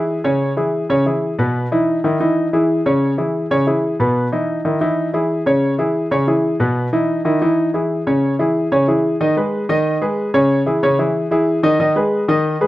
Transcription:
0.00 0.18 E3 medium
0.00 0.18 E4 medium
0.00 0.18 G#4 medium
0.24 0.51 C#3 medium
0.24 0.51 C#4 medium
0.24 0.51 C#5 medium
0.57 0.84 E3 medium
0.57 0.84 E4 medium
0.57 0.84 G#4 medium
0.90 1.03 C#3 medium
0.90 1.03 C#4 medium
0.90 1.03 C#5 medium
1.06 1.33 E3 medium
1.06 1.33 E4 medium
1.06 1.33 G#4 medium
1.39 1.65 B2 medium
1.39 1.65 B3 medium
1.39 1.66 B4 medium
1.72 1.98 E3 medium
1.72 1.98 D#4 medium
1.72 1.98 E4 medium
2.04 2.17 D#3 medium
2.04 2.17 D#4 medium
2.04 2.18 E4 medium
2.20 2.47 E3 medium
2.20 2.47 D#4 medium
2.20 2.47 E4 medium
2.53 2.80 E3 medium
2.53 2.80 E4 medium
2.53 2.80 G#4 medium
2.86 3.12 C#3 medium
2.86 3.12 C#4 medium
2.86 3.13 C#5 medium
3.18 3.45 E3 medium
3.18 3.45 E4 medium
3.18 3.45 G#4 medium
3.51 3.64 C#3 medium
3.51 3.64 C#4 medium
3.51 3.64 C#5 medium
3.67 3.94 E3 medium
3.67 3.94 E4 medium
3.67 3.94 G#4 medium
4.00 4.26 B2 medium
4.00 4.26 B3 medium
4.00 4.27 B4 medium
4.32 4.59 E3 medium
4.32 4.59 D#4 medium
4.32 4.59 E4 medium
4.65 4.78 D#3 medium
4.65 4.78 D#4 medium
4.65 4.78 E4 medium
4.81 5.08 E3 medium
4.81 5.08 D#4 medium
4.81 5.08 E4 medium
5.13 5.40 E3 medium
5.13 5.40 E4 medium
5.13 5.41 G#4 medium
5.46 5.73 C#3 medium
5.46 5.73 C#4 medium
5.46 5.73 C#5 medium
5.78 6.05 E3 medium
5.78 6.05 E4 medium
5.78 6.06 G#4 medium
6.11 6.24 C#3 medium
6.11 6.25 C#4 medium
6.11 6.25 C#5 medium
6.27 6.54 E3 medium
6.27 6.54 E4 medium
6.27 6.54 G#4 medium
6.60 6.87 B2 medium
6.60 6.87 B3 medium
6.60 6.87 B4 medium
6.93 7.19 E3 medium
6.93 7.19 D#4 medium
6.93 7.20 E4 medium
7.25 7.38 D#3 medium
7.25 7.39 D#4 medium
7.25 7.39 E4 medium
7.42 7.68 E3 medium
7.42 7.68 D#4 medium
7.42 7.68 E4 medium
7.74 8.01 E3 medium
7.74 8.01 E4 medium
7.74 8.01 G#4 medium
8.07 8.33 C#3 medium
8.07 8.33 C#4 medium
8.07 8.33 C#5 medium
8.39 8.66 E3 medium
8.39 8.66 E4 medium
8.39 8.66 G#4 medium
8.72 8.85 C#3 medium
8.72 8.85 C#4 medium
8.72 8.85 C#5 medium
8.88 9.14 E3 medium
8.88 9.15 E4 medium
8.88 9.15 G#4 medium
9.21 9.34 D#3 medium
9.21 9.34 D#4 medium
9.21 9.34 D#5 medium
9.37 9.63 G#3 medium
9.37 9.63 G#4 medium
9.37 9.64 B4 medium
9.69 9.96 D#3 medium
9.69 9.96 D#4 medium
9.69 9.96 D#5 medium
10.01 10.28 G#3 medium
10.01 10.28 G#4 medium
10.01 10.28 B4 medium
10.34 10.60 C#3 medium
10.34 10.61 C#4 medium
10.34 10.61 C#5 medium
10.66 10.80 E3 medium
10.66 10.80 E4 medium
10.66 10.80 G#4 medium
10.83 10.96 C#3 medium
10.83 10.96 C#4 medium
10.83 10.96 C#5 medium
10.99 11.25 E3 medium
10.99 11.25 E4 medium
10.99 11.26 G#4 medium
11.31 11.58 E3 medium
11.31 11.58 E4 medium
11.31 11.58 G#4 medium
11.63 11.77 D#3 medium
11.63 11.77 D#4 medium
11.63 11.77 D#5 medium
11.80 11.93 D#3 medium
11.80 11.93 D#4 medium
11.80 11.93 D#5 medium
11.96 12.22 G#3 medium
11.96 12.22 G#4 medium
11.96 12.23 B4 medium
12.28 12.55 D#3 medium
12.28 12.55 D#4 medium
12.28 12.55 D#5 medium
12.61 12.67 G#3 medium
12.61 12.67 G#4 medium
12.61 12.67 B4 medium

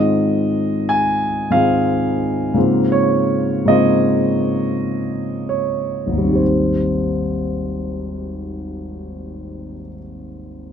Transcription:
0.00 1.47 G#2 soft
0.00 1.48 D#3 soft
0.00 1.48 G#3 soft
0.00 1.48 C4 soft
0.00 1.49 F4 soft
0.00 0.90 D#5 medium
0.89 1.52 G#5 medium
1.50 2.51 G#2 soft
1.50 2.51 D#3 soft
1.50 2.51 G#3 soft
1.50 2.51 C4 soft
1.50 2.52 F4 soft
1.50 2.91 F5 medium
2.54 3.64 G#2 soft
2.54 3.64 C#3 soft
2.54 3.64 A#3 soft
2.54 3.65 C4 soft
2.54 3.65 F4 soft
2.92 3.68 C#5 medium
3.65 6.34 G#2 soft
3.65 6.34 C#3 soft
3.65 6.35 A#3 soft
3.65 6.21 C4 soft
3.65 6.35 F4 soft
3.65 5.50 D#5 medium
5.49 6.39 C#5 soft
6.07 9.71 G#1 soft
6.11 9.76 D#2 soft
6.17 9.81 G3 soft
6.23 9.87 C4 soft
6.28 9.92 D#4 soft
6.32 9.97 G4 soft
6.32 10.00 C5 soft

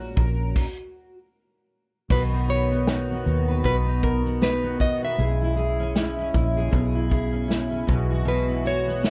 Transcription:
0.00 0.13 A#1 loud
0.00 0.65 A#2 medium
0.00 0.55 G#3 medium
0.00 0.65 C#4 medium
0.00 1.15 F#4 medium
0.00 0.14 G#4 medium
0.00 0.15 A#4 medium
0.16 0.53 A#1 medium
0.16 0.64 A#4 medium
0.16 kick loud
0.16 shaker soft
0.56 kick medium
0.56 crash medium
2.10 3.22 B1 loud
2.10 3.63 B2 medium
2.10 5.16 D#3 medium
2.10 5.16 B3 medium
2.10 5.16 F#4 medium
2.10 2.47 B4 medium
2.10 2.22 B4 medium
2.10 kick loud
2.10 crash medium
2.33 2.86 D#4 medium
2.48 3.47 B4 medium
2.48 3.65 C#5 medium
2.48 shaker medium
2.72 3.10 B3 medium
2.72 shaker medium
2.87 3.24 D#4 medium
2.87 snare loud
2.87 shaker medium
3.11 4.24 B3 medium
3.26 3.61 D#2 medium
3.26 3.85 D#4 medium
3.26 shaker soft
3.48 3.63 B4 medium
3.64 4.76 B1 loud
3.64 5.19 B2 medium
3.64 4.03 B4 medium
3.64 3.76 B4 loud
3.64 kick medium
3.64 shaker medium
3.86 4.40 D#4 medium
4.03 4.39 A#4 medium
4.03 kick medium
4.03 shaker soft
4.25 4.62 B3 medium
4.25 shaker medium
4.41 4.78 D#4 medium
4.41 4.81 B4 loud
4.41 snare loud
4.41 shaker medium
4.63 5.27 B3 medium
4.79 5.27 D#4 medium
4.79 5.02 D#5 loud
4.79 kick medium
4.79 shaker soft
5.02 5.18 B4 medium
5.02 7.31 E5 medium
5.18 6.30 B1 loud
5.18 7.86 C#3 medium
5.18 9.10 G#3 medium
5.18 7.86 E4 medium
5.18 5.56 G#4 medium
5.18 shaker medium
5.41 5.95 E4 medium
5.56 6.56 G#4 medium
5.56 shaker medium
5.80 6.17 C#4 medium
5.95 6.33 E4 medium
5.95 snare loud
5.95 shaker medium
6.19 7.31 C#4 medium
6.34 6.70 A#1 medium
6.34 6.95 E4 medium
6.34 kick loud
6.34 shaker medium
6.57 6.72 G#4 medium
6.57 shaker soft
6.71 7.85 B1 loud
6.71 7.86 B2 medium
6.71 7.09 G#4 medium
6.71 kick medium
6.71 shaker medium
6.95 7.48 E4 medium
7.10 8.10 G#4 medium
7.10 kick medium
7.10 shaker soft
7.32 7.70 C#4 medium
7.48 8.13 E4 medium
7.48 snare loud
7.48 shaker medium
7.71 7.97 C#4 medium
7.87 9.10 B1 loud
7.87 8.24 B2 medium
7.87 9.10 E3 medium
7.87 9.10 F#4 medium
7.87 kick loud
7.87 shaker soft
8.10 8.25 F#4 medium
8.25 9.10 B2 medium
8.25 8.64 F#4 medium
8.25 8.67 B4 medium
8.25 shaker medium
8.49 9.02 E4 medium
8.65 9.10 F#4 medium
8.65 9.10 C#5 loud
8.65 shaker medium
8.88 9.10 B3 medium
8.88 shaker medium
9.03 9.10 E4 medium
9.03 snare loud
9.03 shaker medium

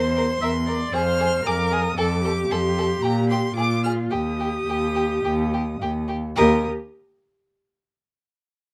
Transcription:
0.00 0.36 E2 medium
0.00 0.41 C5 loud
0.00 0.92 C6 loud
0.16 0.24 A#4 medium
0.41 0.87 E2 medium
0.41 0.51 A#4 medium
0.41 0.49 E5 medium
0.67 0.76 A#4 medium
0.67 0.94 D5 loud
0.93 1.39 F2 medium
0.93 1.01 G#4 medium
0.93 1.45 C5 loud
0.93 1.48 F6 loud
1.20 1.28 G#4 medium
1.45 1.91 F2 medium
1.45 1.54 G#4 medium
1.45 1.96 A#4 loud
1.45 1.74 D6 loud
1.72 1.80 G#4 medium
1.72 1.98 D#6 loud
1.97 2.44 F2 loud
1.97 2.23 A4 medium
1.97 2.06 A4 medium
1.97 2.52 D6 loud
2.23 3.54 G4 loud
2.23 2.32 A4 medium
2.50 2.97 F2 medium
2.50 2.59 A4 medium
2.50 3.04 C6 loud
2.78 2.86 A4 medium
3.02 3.50 A#2 medium
3.02 3.12 G4 medium
3.02 3.29 A#5 loud
3.30 3.39 G4 medium
3.30 3.55 C6 loud
3.56 4.05 A#2 medium
3.56 4.13 F4 medium
3.56 3.65 G#4 medium
3.56 3.83 D6 loud
3.84 3.93 G#4 medium
3.84 3.92 F6 loud
4.11 4.62 D#2 medium
4.11 4.19 G4 medium
4.11 6.09 G4 medium
4.11 6.05 D#6 loud
4.40 4.48 G4 medium
4.68 5.18 D#2 medium
4.68 4.77 G4 medium
4.95 5.03 G4 medium
5.24 5.74 D#2 medium
5.24 5.33 G4 medium
5.54 5.62 G4 medium
5.81 6.31 D#2 medium
5.81 5.90 G4 medium
6.08 6.16 G4 medium
6.36 6.68 D#2 loud
6.36 6.68 G4 medium
6.36 6.67 A#4 medium
6.36 6.68 D#6 loud

